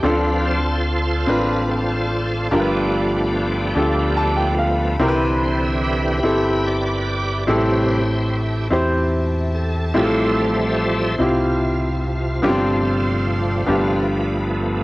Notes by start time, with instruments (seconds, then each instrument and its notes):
Already playing: string section A5
0.03 fingered electric bass D2, grand piano D3 C4 D4 F4 A4, tonewheel organ D3 F3 C4 F4 B4, string section D5 F5
0.45 tonewheel organ F4 A4 C5
1.27 fingered electric bass A1, grand piano C4 D4 F4 B4, tonewheel organ B4
1.69 tonewheel organ C4 F4 A4
2.51 fingered electric bass G1, grand piano G2 D4 F4 G4 A#4, tonewheel organ F3 A3 B3 D4 G4, string section G5 B5
2.60 grand piano B4
3.75 fingered electric bass D2, grand piano D4 F4 G4 A4
4.17 grand piano A5
4.37 grand piano G5
4.59 grand piano F5
4.99 fingered electric bass C2, grand piano C3 C4 E4 G4 A#4, tonewheel organ D3 E3 C4, string section E5
5.08 grand piano B4
5.43 tonewheel organ C5
5.64 tonewheel organ E5
5.84 tonewheel organ G4 B4 E5
6.23 fingered electric bass G1, grand piano C4 E4 G4 A4
6.66 tonewheel organ G4 B4 D5
7.47 fingered electric bass A1, grand piano A2 C4 E4 G4 A4, tonewheel organ C3 G3 E4 G4 B4 C5, string section E5 A5
8.70 fingered electric bass E2, grand piano C4 E4 G4 C5
9.55 tonewheel organ A4
9.94 fingered electric bass A1, grand piano A2 C4 E4 F4 G4, tonewheel organ F3 G3 A3 A4 C5 E5
10.03 grand piano A4
11.18 fingered electric bass C2, tonewheel organ C3 F4, grand piano C4 E4 F4 G4
12.42 fingered electric bass G1, grand piano G2 B3 D4 F4 G4, tonewheel organ F3 A3 C4, string section D5 G5 C6
12.49 grand piano C4
13.66 fingered electric bass G1, grand piano G2 B3 D4 F4 G4, tonewheel organ F3 A3 B3, string section B5